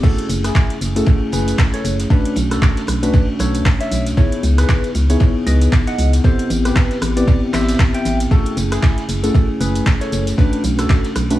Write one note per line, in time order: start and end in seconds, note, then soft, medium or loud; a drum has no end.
0.03 0.92 A3 medium
0.03 0.92 C#4 medium
0.03 0.92 E4 medium
0.03 0.28 F#4 medium
0.03 0.28 A4 loud
0.03 kick loud
0.03 crash loud
0.03 ride medium
0.03 tambourine soft
0.18 closed hi-hat medium
0.18 ride soft
0.29 0.50 F#1 loud
0.29 open hi-hat loud
0.29 ride medium
0.29 tambourine medium
0.44 0.75 E4 medium
0.44 0.75 G#4 medium
0.44 cross-stick medium
0.44 snare medium
0.44 closed hi-hat medium
0.44 tambourine soft
0.55 kick loud
0.55 snare loud
0.55 clap loud
0.55 ride medium
0.55 tambourine soft
0.70 snare soft
0.70 closed hi-hat soft
0.81 1.02 F#1 medium
0.81 open hi-hat loud
0.81 ride medium
0.81 tambourine medium
0.96 2.08 A3 medium
0.96 2.08 C#4 medium
0.96 2.08 E4 medium
0.96 1.20 F#4 medium
0.96 2.08 G#4 loud
0.96 1.20 A4 medium
0.96 closed hi-hat medium
0.96 tambourine soft
1.06 kick loud
1.06 ride loud
1.06 tambourine soft
1.32 1.54 F#1 loud
1.32 1.57 G#4 medium
1.32 1.57 B4 medium
1.32 open hi-hat loud
1.32 ride medium
1.32 tambourine medium
1.48 closed hi-hat medium
1.48 tambourine soft
1.58 kick loud
1.58 snare loud
1.58 clap loud
1.58 ride medium
1.58 tambourine soft
1.74 1.97 A4 medium
1.74 1.97 C#5 medium
1.74 snare medium
1.74 closed hi-hat medium
1.85 2.06 F#1 medium
1.85 open hi-hat loud
1.85 ride medium
1.85 tambourine medium
1.99 snare soft
1.99 closed hi-hat medium
1.99 tambourine soft
2.10 2.99 A3 medium
2.10 2.99 C#4 medium
2.10 2.99 D4 medium
2.10 2.35 D4 medium
2.10 2.99 F#4 medium
2.10 2.35 B4 loud
2.10 kick loud
2.10 ride medium
2.10 tambourine soft
2.25 closed hi-hat medium
2.36 2.57 B1 loud
2.36 open hi-hat loud
2.36 ride medium
2.36 tambourine medium
2.51 2.82 F#4 medium
2.51 2.82 A4 loud
2.51 cross-stick medium
2.51 snare soft
2.51 closed hi-hat medium
2.51 tambourine soft
2.62 kick loud
2.62 snare loud
2.62 clap loud
2.62 ride medium
2.62 tambourine soft
2.77 snare medium
2.77 closed hi-hat soft
2.87 3.09 B1 medium
2.87 cross-stick medium
2.87 open hi-hat loud
2.87 ride medium
2.87 tambourine medium
3.03 4.15 A3 medium
3.03 4.15 C#4 medium
3.03 3.27 D4 medium
3.03 4.15 D4 medium
3.03 4.15 F#4 loud
3.03 3.27 B4 medium
3.03 closed hi-hat medium
3.03 ride soft
3.03 tambourine soft
3.13 kick loud
3.13 ride medium
3.13 tambourine soft
3.39 3.61 B1 loud
3.39 3.64 A4 medium
3.39 3.64 C#5 medium
3.39 cross-stick medium
3.39 snare medium
3.39 open hi-hat loud
3.39 ride medium
3.39 tambourine medium
3.55 closed hi-hat medium
3.55 tambourine soft
3.65 kick loud
3.65 snare loud
3.65 clap loud
3.65 ride loud
3.65 tambourine soft
3.80 4.04 C#5 medium
3.80 4.04 E5 medium
3.80 snare medium
3.80 closed hi-hat medium
3.91 4.13 B1 medium
3.91 open hi-hat loud
3.91 ride medium
3.91 tambourine medium
4.05 snare soft
4.05 closed hi-hat medium
4.05 tambourine soft
4.17 5.06 B3 medium
4.17 5.06 D#4 medium
4.17 5.06 E4 medium
4.17 4.42 E4 medium
4.17 5.06 G#4 medium
4.17 4.42 C#5 loud
4.17 kick loud
4.17 ride medium
4.17 tambourine soft
4.32 closed hi-hat soft
4.32 ride soft
4.43 4.64 C#2 loud
4.43 open hi-hat loud
4.43 ride medium
4.43 tambourine medium
4.58 4.89 G#4 medium
4.58 4.89 B4 loud
4.58 cross-stick medium
4.58 snare medium
4.58 closed hi-hat medium
4.58 tambourine soft
4.69 kick loud
4.69 snare loud
4.69 clap loud
4.69 ride medium
4.69 tambourine soft
4.84 snare soft
4.84 closed hi-hat soft
4.95 5.16 C#2 medium
4.95 open hi-hat loud
4.95 ride medium
4.95 tambourine medium
5.10 6.21 B3 medium
5.10 6.22 D#4 medium
5.10 5.34 E4 medium
5.10 6.22 E4 medium
5.10 6.22 G#4 loud
5.10 5.34 C#5 medium
5.10 closed hi-hat medium
5.10 tambourine soft
5.20 kick loud
5.20 ride loud
5.20 tambourine soft
5.47 5.68 C#2 loud
5.47 5.71 B4 medium
5.47 5.71 D#5 loud
5.47 open hi-hat loud
5.47 ride medium
5.47 tambourine medium
5.61 closed hi-hat medium
5.61 tambourine soft
5.72 kick loud
5.72 snare loud
5.72 clap loud
5.72 ride loud
5.72 tambourine soft
5.87 6.11 D#5 medium
5.87 6.11 F#5 medium
5.87 snare medium
5.87 closed hi-hat medium
5.98 6.19 C#2 medium
5.98 open hi-hat loud
5.98 ride medium
5.98 tambourine medium
6.13 snare soft
6.13 closed hi-hat medium
6.13 tambourine soft
6.24 7.13 B3 medium
6.24 7.13 C4 medium
6.24 7.13 E4 medium
6.24 7.13 G4 medium
6.24 6.49 A4 medium
6.24 6.49 C5 loud
6.24 kick loud
6.24 ride medium
6.24 tambourine soft
6.39 closed hi-hat soft
6.50 6.71 A1 loud
6.50 open hi-hat loud
6.50 ride medium
6.50 tambourine medium
6.65 6.96 G4 medium
6.65 6.96 B4 loud
6.65 cross-stick medium
6.65 snare soft
6.65 closed hi-hat medium
6.65 tambourine soft
6.76 kick loud
6.76 snare loud
6.76 clap loud
6.76 ride medium
6.76 tambourine soft
6.91 snare medium
6.91 closed hi-hat soft
7.02 7.23 A1 medium
7.02 cross-stick medium
7.02 open hi-hat loud
7.02 ride medium
7.02 tambourine medium
7.17 8.28 B3 loud
7.17 8.28 C4 medium
7.17 8.29 E4 medium
7.17 8.29 G4 loud
7.17 7.41 B4 medium
7.17 7.41 D5 medium
7.17 closed hi-hat medium
7.17 ride soft
7.17 tambourine soft
7.28 kick loud
7.28 ride loud
7.28 tambourine soft
7.53 7.75 A1 medium
7.53 7.78 C5 medium
7.53 7.78 E5 loud
7.53 cross-stick medium
7.53 snare loud
7.53 clap medium
7.53 open hi-hat loud
7.53 ride medium
7.53 tambourine medium
7.61 snare medium
7.61 ride medium
7.69 snare medium
7.69 closed hi-hat medium
7.69 ride medium
7.69 tambourine soft
7.74 snare medium
7.74 ride medium
7.79 kick loud
7.79 snare loud
7.79 clap loud
7.79 ride medium
7.79 tambourine soft
7.94 8.18 E5 medium
7.94 8.18 G5 medium
7.94 snare medium
7.94 closed hi-hat soft
8.05 8.26 A1 medium
8.05 open hi-hat loud
8.05 ride medium
8.05 tambourine medium
8.20 snare soft
8.20 closed hi-hat medium
8.20 tambourine soft
8.31 9.20 A3 medium
8.31 9.20 C#4 medium
8.31 9.20 E4 medium
8.31 8.56 F#4 medium
8.31 9.20 G#4 medium
8.31 8.56 A4 loud
8.31 kick loud
8.31 ride medium
8.31 tambourine soft
8.45 closed hi-hat medium
8.45 ride soft
8.57 8.78 F#1 loud
8.57 open hi-hat loud
8.57 ride medium
8.57 tambourine medium
8.72 9.03 E4 medium
8.72 9.03 G#4 medium
8.72 cross-stick medium
8.72 snare medium
8.72 closed hi-hat medium
8.72 tambourine soft
8.83 kick loud
8.83 snare loud
8.83 clap loud
8.83 ride medium
8.83 tambourine soft
8.98 snare soft
8.98 closed hi-hat soft
9.09 9.30 F#1 medium
9.09 open hi-hat loud
9.09 ride medium
9.09 tambourine medium
9.23 10.35 A3 medium
9.23 10.35 C#4 medium
9.23 10.35 E4 medium
9.23 9.47 F#4 medium
9.23 10.36 G#4 loud
9.23 9.47 A4 medium
9.23 closed hi-hat medium
9.23 tambourine soft
9.35 kick loud
9.35 ride medium
9.35 tambourine soft
9.60 9.82 F#1 loud
9.60 9.85 G#4 medium
9.60 9.85 B4 medium
9.60 open hi-hat loud
9.60 ride medium
9.60 tambourine medium
9.75 closed hi-hat medium
9.75 tambourine soft
9.86 kick loud
9.86 snare loud
9.86 clap loud
9.86 ride medium
9.86 tambourine soft
10.01 10.25 A4 medium
10.01 10.25 C#5 medium
10.01 snare medium
10.01 closed hi-hat soft
10.12 10.33 F#1 loud
10.12 open hi-hat loud
10.12 ride medium
10.12 tambourine medium
10.27 snare soft
10.27 closed hi-hat medium
10.27 tambourine soft
10.38 11.27 A3 medium
10.38 11.27 C#4 medium
10.38 10.62 D4 medium
10.38 11.27 D4 medium
10.38 11.27 F#4 medium
10.38 10.62 B4 loud
10.38 kick loud
10.38 ride loud
10.38 tambourine soft
10.53 closed hi-hat medium
10.64 10.85 B1 loud
10.64 open hi-hat loud
10.64 ride medium
10.64 tambourine medium
10.79 11.10 F#4 medium
10.79 11.10 A4 medium
10.79 cross-stick medium
10.79 snare soft
10.79 closed hi-hat medium
10.79 tambourine soft
10.90 kick loud
10.90 snare loud
10.90 clap loud
10.90 ride medium
10.90 tambourine soft
11.04 snare medium
11.04 closed hi-hat soft
11.15 11.37 B1 medium
11.15 cross-stick medium
11.15 open hi-hat loud
11.15 ride medium
11.15 tambourine medium
11.30 11.39 A3 loud
11.30 11.39 C#4 medium
11.30 11.39 D4 medium
11.30 11.39 F#4 loud
11.30 11.39 B4 medium
11.30 closed hi-hat medium
11.30 ride soft
11.30 tambourine soft